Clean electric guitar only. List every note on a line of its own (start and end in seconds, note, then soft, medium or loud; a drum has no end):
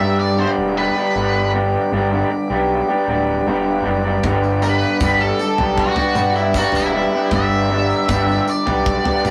0.00 0.36 G2 loud
0.00 0.38 G3 medium
0.00 0.38 B3 medium
0.00 0.38 D4 medium
0.00 0.39 G4 medium
0.37 1.15 G2 medium
0.37 1.15 D3 medium
0.37 0.76 G3 medium
0.37 0.77 B3 medium
0.37 0.78 D4 medium
0.37 0.79 G4 medium
0.77 0.98 G3 medium
0.77 0.98 B3 medium
0.77 0.97 D4 medium
0.77 0.96 G4 medium
0.96 1.16 G3 medium
0.96 1.17 B3 medium
0.96 1.18 D4 medium
0.96 1.18 G4 medium
1.16 1.91 G2 medium
1.16 1.91 D3 medium
1.16 1.53 G3 medium
1.16 1.54 B3 medium
1.16 1.55 D4 medium
1.16 1.56 G4 medium
1.53 1.92 G3 medium
1.53 1.93 B3 medium
1.53 1.93 D4 medium
1.53 1.94 G4 medium
1.91 3.45 G2 medium
1.91 2.50 D3 loud
1.91 2.14 G3 loud
1.91 2.13 B3 loud
1.91 2.12 D4 loud
1.91 2.11 G4 loud
2.11 2.30 G3 medium
2.11 2.31 B3 medium
2.11 2.31 D4 medium
2.11 2.31 G4 medium
2.31 muted clean electric guitar stroke soft
2.50 2.90 G3 medium
2.50 2.89 B3 medium
2.50 2.89 D4 medium
2.50 2.88 G4 medium
2.88 3.07 G3 medium
2.88 3.08 B3 medium
2.88 3.09 D4 medium
2.88 3.10 G4 medium
3.07 3.47 G3 medium
3.07 3.47 B3 medium
3.07 3.48 D4 medium
3.07 3.48 G4 medium
3.46 4.23 G2 medium
3.46 4.23 D3 medium
3.46 3.83 G3 medium
3.46 3.84 B3 medium
3.46 3.85 D4 loud
3.46 3.86 G4 loud
3.83 4.06 G3 medium
3.83 4.05 B3 medium
3.83 4.05 D4 medium
3.83 4.03 G4 medium
4.04 4.25 G3 medium
4.04 4.25 B3 medium
4.04 4.26 D4 medium
4.04 4.26 G4 medium
4.23 5.00 G2 medium
4.23 5.00 D3 medium
4.23 4.61 G3 medium
4.23 4.62 B3 medium
4.23 4.63 D4 medium
4.23 4.64 G4 medium
4.62 5.01 G3 medium
4.62 5.02 B3 medium
4.62 5.03 D4 medium
4.62 5.03 G4 medium
5.00 6.54 G2 medium
5.00 5.58 D3 medium
5.00 5.22 G3 loud
5.00 5.21 B3 loud
5.00 5.20 D4 loud
5.00 5.19 G4 loud
5.19 5.39 G3 medium
5.19 5.40 B3 medium
5.19 5.40 D4 medium
5.19 5.41 G4 medium
5.40 muted clean electric guitar stroke soft
5.58 5.98 G3 medium
5.58 5.98 B3 medium
5.58 5.97 D4 medium
5.58 5.95 G4 medium
5.96 6.15 G3 medium
5.96 6.16 B3 medium
5.96 6.18 D4 medium
5.96 6.18 G4 medium
6.16 6.56 G3 medium
6.16 6.56 B3 medium
6.16 6.57 D4 medium
6.16 6.58 G4 medium
6.54 7.31 G2 medium
6.54 7.31 D3 medium
6.54 6.93 G3 medium
6.54 6.94 B3 medium
6.54 6.95 D4 loud
6.54 6.96 G4 medium
6.94 7.15 G3 medium
6.94 7.14 B3 medium
6.94 7.13 D4 medium
6.94 7.12 G4 medium
7.13 7.32 G3 medium
7.13 7.33 B3 medium
7.13 7.34 D4 medium
7.13 7.34 G4 medium
7.31 8.08 G2 medium
7.31 8.08 D3 medium
7.31 7.69 G3 medium
7.31 7.71 B3 medium
7.31 7.71 D4 medium
7.31 7.72 G4 medium
7.70 8.09 G3 medium
7.70 8.10 B3 medium
7.70 8.10 D4 medium
7.70 8.11 G4 medium
8.08 9.30 G2 medium
8.08 8.67 D3 loud
8.08 8.30 G3 loud
8.08 8.29 B3 loud
8.08 8.28 D4 loud
8.08 8.27 G4 loud
8.27 8.47 G3 medium
8.27 8.47 B3 medium
8.27 8.47 D4 medium
8.27 8.47 G4 medium
8.47 muted clean electric guitar stroke soft
8.66 9.07 G3 medium
8.66 9.06 B3 medium
8.66 9.05 D4 medium
8.66 9.04 G4 medium
9.04 9.23 G3 medium
9.04 9.25 B3 medium
9.04 9.26 D4 medium
9.04 9.26 G4 medium
9.24 9.30 G3 medium
9.24 9.30 B3 medium
9.24 9.30 D4 medium
9.24 9.30 G4 medium